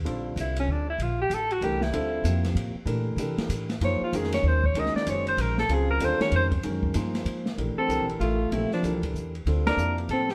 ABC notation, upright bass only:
X:1
M:3/4
L:1/8
Q:"Swing" 1/4=191
K:Bblyd
V:1 name="Upright bass" clef=bass
B,,,2 C,,2 D,,2 | B,,,2 A,,,2 C,,2 | D,,2 F,,2 A,, z | B,,2 C, z A,,2 |
_G,, z F,,2 _E,,2 | _D,, z _G,,,2 B,,,2 | _D,,2 _E,, z F,,2 | _G,,2 =G,,2 _A,,2 |
B,,, z (3C,, B,,, A,,, A,,,2 | B,,, z C,,2 E,,2 | D,,2 F,,2 A,,2 |]